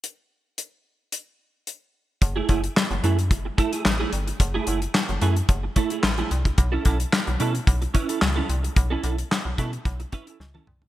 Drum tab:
HH |x---x---x---x---|x-xx-xxxx-xx--xx|x-xx-xxxx-xx-xxx|x-xx-xxxxxxx--xx|
CP |----------------|----x-------x---|----x-------x---|----x-------x---|
SD |----------------|----o-------o---|----o-------o---|----o-------o---|
T1 |----------------|----------------|----------------|----------------|
T2 |----------------|----------------|----------------|----------------|
FT |----------------|----------------|----------------|----------------|
BD |----------------|o-o-----o-o-----|o-------o-o----o|o-o-----o-o-----|

HH |x-xx--xxxxxx----|
CP |----x-----------|
SD |----o-------o---|
T1 |-------------o--|
T2 |--------------o-|
FT |---------------o|
BD |o-----o-o-o-----|